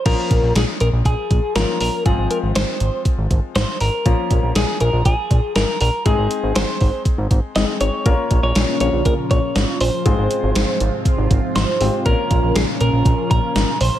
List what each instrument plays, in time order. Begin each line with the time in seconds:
0.06 analog synth bass A#1, grand piano F3 A#3 C#4 F4, clean electric guitar A#4, kick, closed hi-hat, crash
0.31 analog synth bass A#1, kick, closed hi-hat
0.43 analog synth bass A#1
0.56 analog synth bass A#1, clean electric guitar G#4, snare, closed hi-hat
0.80 analog synth bass A#1, clean electric guitar A#4, closed hi-hat
0.93 analog synth bass A#1
1.05 analog synth bass A#1, clean electric guitar G#4, kick, closed hi-hat
1.31 analog synth bass A#1, kick, closed hi-hat
1.55 analog synth bass G#1, grand piano F3 A#3 C#4 F4, clean electric guitar A#4, snare, closed hi-hat
1.81 analog synth bass A#1, clean electric guitar A#4, open hi-hat
2.06 analog synth bass G#1, grand piano F3 G#3 C4 F4, clean electric guitar G#4, kick, closed hi-hat
2.18 analog synth bass G#1
2.31 clean electric guitar A#4, closed hi-hat
2.43 analog synth bass G#1
2.55 analog synth bass G#1, clean electric guitar C5, snare, closed hi-hat
2.80 analog synth bass G#1, closed hi-hat
3.05 kick, closed hi-hat
3.18 analog synth bass G#1
3.31 analog synth bass G#1, kick, closed hi-hat
3.55 analog synth bass G#1, clean electric guitar C5, snare, closed hi-hat
3.80 analog synth bass G#1, clean electric guitar A#4, open hi-hat
4.06 analog synth bass A#1, grand piano F3 A#3 C#4 F4, kick, closed hi-hat
4.31 analog synth bass A#1, kick, closed hi-hat
4.43 analog synth bass A#1
4.55 analog synth bass A#1, clean electric guitar G#4, snare, closed hi-hat
4.80 analog synth bass A#1, clean electric guitar A#4, closed hi-hat
4.93 analog synth bass A#1
5.05 analog synth bass A#1, clean electric guitar G#4, kick, closed hi-hat
5.31 analog synth bass A#1, kick, closed hi-hat
5.56 analog synth bass G#1, clean electric guitar A#4, snare, closed hi-hat
5.81 analog synth bass A#1, clean electric guitar A#4, open hi-hat
6.06 analog synth bass G#1, grand piano G#3 C4 D#4 G#4, clean electric guitar G#4, kick, closed hi-hat
6.18 analog synth bass G#1
6.31 closed hi-hat
6.43 analog synth bass G#1
6.55 analog synth bass G#1, clean electric guitar C5, snare, closed hi-hat
6.81 analog synth bass G#1, kick, open hi-hat
7.05 kick, closed hi-hat
7.18 analog synth bass G#1
7.31 analog synth bass G#1, kick, closed hi-hat
7.56 analog synth bass G#1, grand piano G#3 C4 D#4 G#4, clean electric guitar D#5, snare, closed hi-hat
7.81 analog synth bass G#1, clean electric guitar C#5, closed hi-hat
8.06 analog synth bass A#1, analog synth pad A#2 C#3 F3 C#4 F4, grand piano A#3 C#4 F4 A#4, kick, closed hi-hat
8.31 analog synth bass A#1, kick, closed hi-hat
8.43 analog synth bass A#1, clean electric guitar C#5
8.55 analog synth bass A#1, snare, closed hi-hat
8.80 analog synth bass A#1, clean electric guitar C#5, closed hi-hat
8.93 analog synth bass A#1
9.05 analog synth bass A#1, clean electric guitar A#4, kick, closed hi-hat
9.31 analog synth bass A#1, clean electric guitar C#5, kick, closed hi-hat
9.56 analog synth bass G#1, snare, closed hi-hat
9.81 analog synth bass A#1, clean electric guitar C5, open hi-hat
10.06 analog synth bass G#1, analog synth pad G#2 C3 F3 C4, grand piano G#3 C4 F4 G#4, kick, closed hi-hat
10.18 analog synth bass G#1
10.31 closed hi-hat
10.43 analog synth bass G#1
10.55 analog synth bass G#1, snare, closed hi-hat
10.80 analog synth bass G#1, closed hi-hat
11.05 kick, closed hi-hat
11.18 analog synth bass G#1
11.31 analog synth bass G#1, kick, closed hi-hat
11.56 analog synth bass G#1, clean electric guitar C5, snare, closed hi-hat
11.81 analog synth bass G#1, grand piano G#3 C4 F4 G4, open hi-hat
12.06 analog synth bass A#1, analog synth pad A#2 C#3 C#4, grand piano A#3 C#4 F4 A#4, clean electric guitar A#4, kick, closed hi-hat
12.31 analog synth bass A#1, kick, closed hi-hat
12.43 analog synth bass A#1
12.56 analog synth bass A#1, clean electric guitar G#4, snare, closed hi-hat
12.81 analog synth bass A#1, clean electric guitar A#4, closed hi-hat
12.93 analog synth bass A#1
13.05 analog synth bass A#1, kick, closed hi-hat
13.31 analog synth bass A#1, clean electric guitar A#4, kick, closed hi-hat
13.56 analog synth bass G#1, snare, closed hi-hat
13.81 analog synth bass A#1, clean electric guitar C5, open hi-hat